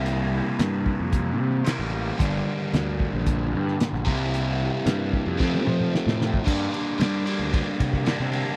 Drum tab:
CC |----------------|----------------|----------------|x---------------|
RD |----------------|----------------|----------------|--x-x-x-x-x-x-x-|
HH |x---x---x---x---|x---x---x---x---|x---x-----------|----------------|
SD |----o-------oo--|----o------ooo--|----o---o---ooo-|----o-------oo--|
T1 |----------------|----------------|---------o------|----------------|
T2 |----------------|----------------|----------oo----|----------------|
BD |------o-o-------|o-----o-o-----o-|------o-o------o|o-------o-oo----|